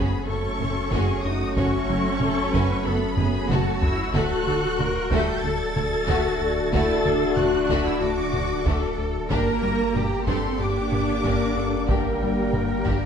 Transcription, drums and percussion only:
0.60 taiko mid medium
0.92 taiko medium
1.57 taiko medium
2.21 taiko mid medium
2.53 taiko medium
3.18 taiko low-mid medium
3.50 taiko mid medium
3.82 taiko low loud
4.14 taiko loud
4.79 taiko mid medium
5.11 taiko medium
5.76 taiko mid medium
6.08 taiko medium
6.72 taiko loud
7.37 taiko mid medium
7.69 taiko medium
8.33 taiko mid medium
8.66 taiko medium
9.30 taiko loud
9.95 taiko mid medium
10.27 taiko medium
10.92 taiko mid medium
11.24 taiko medium
11.89 taiko loud
12.53 taiko mid medium
12.86 taiko medium

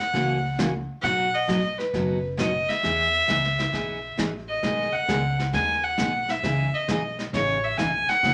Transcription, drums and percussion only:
0.14 brush sweep soft
0.14 kick soft
0.14 snare soft
0.59 kick soft
0.59 snare medium
0.59 hi-hat pedal medium
1.04 brush sweep medium
1.04 kick soft
1.04 snare soft
1.49 kick soft
1.49 snare medium
1.49 hi-hat pedal medium
1.79 snare soft
1.94 brush sweep soft
1.94 kick soft
1.94 snare soft
2.39 kick soft
2.39 snare medium
2.39 hi-hat pedal medium
2.69 snare soft
2.83 brush sweep soft
2.83 kick soft
2.83 snare soft
3.29 kick soft
3.29 snare medium
3.29 hi-hat pedal soft
3.44 snare soft
3.59 snare soft
3.73 brush sweep soft
3.73 kick soft
3.73 snare soft
4.18 kick soft
4.18 snare medium
4.18 hi-hat pedal medium
4.63 brush sweep medium
4.63 kick soft
4.63 snare soft
5.09 kick soft
5.09 snare medium
5.09 hi-hat pedal medium
5.39 snare soft
5.53 brush sweep soft
5.53 kick soft
5.53 snare soft
5.98 kick soft
5.98 snare medium
5.98 hi-hat pedal medium
6.28 snare soft
6.43 brush sweep medium
6.43 kick soft
6.43 snare soft
6.88 kick soft
6.88 snare medium
6.88 hi-hat pedal medium
7.19 snare soft
7.33 brush sweep soft
7.33 kick soft
7.33 snare soft
7.78 kick soft
7.78 snare medium
7.78 hi-hat pedal medium
8.09 snare soft
8.23 brush sweep medium
8.23 kick soft
8.23 snare soft

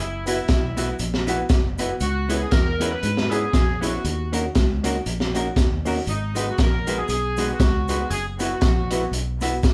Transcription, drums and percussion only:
0.27 closed hi-hat medium
0.27 cabasa medium
0.48 kick loud
0.48 snare loud
0.48 closed hi-hat medium
0.48 cabasa soft
0.77 closed hi-hat medium
0.77 cabasa medium
0.99 closed hi-hat medium
0.99 cabasa medium
1.14 snare medium
1.27 closed hi-hat medium
1.27 cabasa medium
1.49 kick loud
1.49 snare loud
1.49 closed hi-hat medium
1.49 cabasa medium
1.78 closed hi-hat medium
1.78 cabasa medium
2.00 closed hi-hat medium
2.00 cabasa medium
2.30 closed hi-hat medium
2.30 cabasa medium
2.51 kick loud
2.51 snare loud
2.51 closed hi-hat medium
2.51 cabasa soft
2.81 closed hi-hat medium
2.81 cabasa loud
3.03 closed hi-hat medium
3.03 cabasa medium
3.17 snare medium
3.31 closed hi-hat medium
3.31 cabasa medium
3.53 kick loud
3.53 snare loud
3.53 closed hi-hat medium
3.53 cabasa medium
3.83 closed hi-hat medium
3.83 cabasa medium
4.05 closed hi-hat medium
4.05 cabasa medium
4.33 closed hi-hat medium
4.33 cabasa medium
4.55 kick loud
4.55 snare loud
4.55 closed hi-hat medium
4.55 cabasa soft
4.84 closed hi-hat loud
4.84 cabasa medium
5.06 closed hi-hat medium
5.06 cabasa medium
5.20 snare medium
5.35 closed hi-hat medium
5.35 cabasa medium
5.56 kick loud
5.56 snare loud
5.56 closed hi-hat medium
5.56 cabasa medium
5.85 open hi-hat medium
5.85 cabasa medium
6.07 closed hi-hat medium
6.07 cabasa medium
6.35 closed hi-hat medium
6.35 cabasa medium
6.58 kick loud
6.58 snare loud
6.58 closed hi-hat medium
6.58 cabasa soft
6.87 closed hi-hat medium
6.87 cabasa medium
7.08 closed hi-hat medium
7.08 cabasa medium
7.37 closed hi-hat medium
7.37 cabasa medium
7.60 kick loud
7.60 snare loud
7.60 closed hi-hat medium
7.60 cabasa medium
7.88 closed hi-hat medium
7.88 cabasa medium
8.10 closed hi-hat medium
8.10 cabasa medium
8.39 closed hi-hat medium
8.39 cabasa medium
8.61 kick loud
8.61 snare loud
8.61 closed hi-hat medium
8.61 cabasa soft
8.91 closed hi-hat medium
8.91 cabasa loud
9.13 closed hi-hat medium
9.13 cabasa medium
9.41 closed hi-hat medium
9.41 cabasa medium
9.63 kick loud
9.63 snare loud
9.63 closed hi-hat medium
9.63 cabasa medium

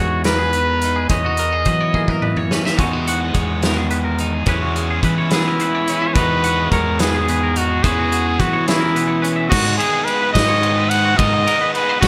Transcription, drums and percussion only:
0.24 snare loud
0.24 closed hi-hat medium
0.53 closed hi-hat medium
0.81 closed hi-hat medium
1.09 kick loud
1.09 closed hi-hat medium
1.37 closed hi-hat medium
1.65 kick medium
1.65 closed hi-hat medium
1.94 kick soft
2.08 kick medium
2.22 mid tom medium
2.36 mid tom medium
2.51 snare medium
2.66 snare medium
2.79 kick loud
2.79 closed hi-hat medium
3.07 closed hi-hat medium
3.34 kick medium
3.34 closed hi-hat medium
3.62 snare loud
3.62 closed hi-hat medium
3.90 closed hi-hat medium
4.18 closed hi-hat medium
4.46 kick medium
4.46 closed hi-hat medium
4.76 closed hi-hat medium
5.03 kick medium
5.03 closed hi-hat medium
5.30 snare loud
5.30 closed hi-hat medium
5.60 closed hi-hat medium
5.87 closed hi-hat medium
6.16 kick loud
6.16 closed hi-hat medium
6.44 closed hi-hat medium
6.72 kick medium
6.72 closed hi-hat medium
6.99 snare loud
6.99 closed hi-hat medium
7.28 closed hi-hat medium
7.56 closed hi-hat medium
7.84 kick loud
7.84 closed hi-hat medium
8.12 closed hi-hat medium
8.40 kick medium
8.40 closed hi-hat medium
8.68 snare medium
8.68 closed hi-hat medium
8.96 closed hi-hat medium
9.24 closed hi-hat medium
9.52 kick loud
9.52 crash loud
9.80 ride medium
10.07 ride medium
10.35 kick medium
10.35 snare loud
10.35 ride loud
10.63 ride medium
10.91 ride medium
11.19 kick loud
11.19 ride loud
11.47 ride medium
11.75 ride medium
12.03 kick medium
12.03 snare loud
12.03 ride loud

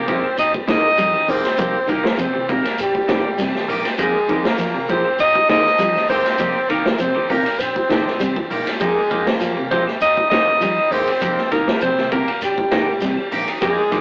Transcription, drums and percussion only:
0.08 kick medium
0.08 ride bell medium
0.08 low conga medium
0.08 shekere soft
0.24 claves medium
0.38 ride bell medium
0.38 high conga soft
0.38 shekere medium
0.54 kick medium
0.67 kick medium
0.67 snare medium
0.67 ride bell medium
0.67 high conga loud
0.67 claves medium
0.67 shekere soft
0.84 low conga medium
0.98 ride bell soft
0.98 high conga medium
0.98 shekere medium
1.13 high conga medium
1.13 claves medium
1.28 open hi-hat medium
1.28 high conga medium
1.28 low conga medium
1.28 shekere soft
1.45 snare soft
1.45 ride bell medium
1.57 kick loud
1.57 ride bell medium
1.57 claves medium
1.57 shekere loud
1.88 kick medium
1.88 ride bell medium
1.88 shekere soft
2.03 snare medium
2.03 high conga loud
2.18 ride bell medium
2.18 high conga soft
2.18 claves medium
2.18 shekere medium
2.35 high conga medium
2.49 kick medium
2.49 ride bell medium
2.49 low conga medium
2.49 shekere soft
2.64 snare soft
2.64 ride bell medium
2.64 claves medium
2.78 ride bell medium
2.78 shekere medium
2.95 kick medium
3.08 kick medium
3.08 snare medium
3.08 ride bell medium
3.08 high conga loud
3.08 claves medium
3.08 shekere soft
3.26 low conga medium
3.38 snare soft
3.38 ride bell medium
3.38 high conga medium
3.38 shekere loud
3.54 snare soft
3.54 high conga medium
3.54 claves medium
3.68 open hi-hat medium
3.68 low conga medium
3.68 shekere soft
3.85 snare soft
3.85 ride bell medium
3.98 kick loud
3.98 ride bell medium
3.98 claves medium
3.98 shekere loud
4.29 kick medium
4.29 ride bell medium
4.29 shekere soft
4.45 snare medium
4.45 ride bell medium
4.45 high conga loud
4.58 snare soft
4.58 ride bell medium
4.58 high conga soft
4.58 claves medium
4.58 shekere medium
4.76 high conga medium
4.88 kick medium
4.88 ride bell medium
4.88 low conga medium
4.88 shekere soft
5.04 claves medium
5.19 ride bell medium
5.19 high conga soft
5.19 shekere medium
5.35 kick medium
5.48 kick medium
5.48 snare medium
5.48 ride bell medium
5.48 high conga loud
5.48 claves medium
5.48 shekere soft
5.66 snare soft
5.78 ride bell medium
5.78 high conga medium
5.78 shekere loud
5.95 snare soft
5.95 high conga medium
5.95 claves medium
6.08 open hi-hat medium
6.08 low conga medium
6.08 shekere soft
6.26 snare soft
6.26 ride bell medium
6.38 kick loud
6.38 ride bell medium
6.38 claves medium
6.38 shekere medium
6.69 ride bell medium
6.69 shekere soft
6.86 snare medium
6.86 high conga medium
6.98 ride bell medium
6.98 high conga soft
6.98 claves medium
6.98 shekere loud
7.16 high conga medium
7.29 kick medium
7.29 open hi-hat medium
7.29 low conga loud
7.29 shekere soft
7.45 ride bell medium
7.45 claves medium
7.59 ride bell medium
7.59 high conga soft
7.59 shekere medium
7.76 kick medium
7.90 kick medium
7.90 snare medium
7.90 ride bell medium
7.90 high conga loud
7.90 claves medium
7.90 shekere soft
8.07 snare soft
8.07 low conga medium
8.20 ride bell medium
8.20 high conga medium
8.20 shekere loud
8.36 kick medium
8.36 high conga medium
8.36 claves medium
8.50 open hi-hat medium
8.50 low conga medium
8.50 shekere soft
8.67 snare soft
8.67 ride bell medium
8.80 kick loud
8.80 ride bell medium
8.80 claves medium
8.80 shekere loud
9.10 kick medium
9.10 ride bell medium
9.10 shekere soft
9.27 snare medium
9.27 ride bell medium
9.27 high conga loud
9.40 snare soft
9.40 ride bell medium
9.40 high conga soft
9.40 claves medium
9.40 shekere medium
9.57 high conga medium
9.71 kick medium
9.71 ride bell medium
9.71 low conga loud
9.71 shekere soft
9.87 snare soft
9.87 claves medium
10.01 ride bell medium
10.01 high conga soft
10.01 shekere medium
10.17 kick medium
10.31 kick medium
10.31 snare medium
10.31 ride bell medium
10.31 high conga loud
10.31 claves medium
10.31 shekere soft
10.48 low conga medium
10.61 ride bell medium
10.61 high conga medium
10.61 shekere loud
10.78 claves medium
10.92 open hi-hat medium
10.92 high conga medium
10.92 low conga medium
10.92 shekere soft
11.07 ride bell medium
11.21 kick loud
11.21 ride bell medium
11.21 claves medium
11.21 shekere loud
11.38 snare soft
11.51 kick medium
11.51 snare soft
11.51 ride bell medium
11.51 shekere soft
11.68 snare medium
11.68 high conga medium
11.81 ride bell medium
11.81 high conga soft
11.81 claves medium
11.81 shekere medium
11.98 snare soft
11.98 high conga medium
12.12 kick medium
12.12 ride bell medium
12.12 low conga medium
12.12 shekere soft
12.28 ride bell medium
12.28 claves medium
12.41 ride bell medium
12.41 high conga soft
12.41 shekere loud
12.58 kick medium
12.71 kick medium
12.71 snare medium
12.71 ride bell medium
12.71 high conga loud
12.71 claves medium
12.71 shekere soft
12.88 low conga medium
13.01 snare soft
13.01 ride bell medium
13.01 high conga medium
13.01 shekere loud
13.17 claves medium
13.31 open hi-hat medium
13.31 high conga medium
13.31 low conga medium
13.31 shekere soft
13.48 ride bell medium
13.62 kick loud
13.62 ride bell medium
13.62 claves medium
13.62 shekere loud
13.92 kick medium
13.92 snare soft
13.92 ride bell medium
13.92 shekere soft

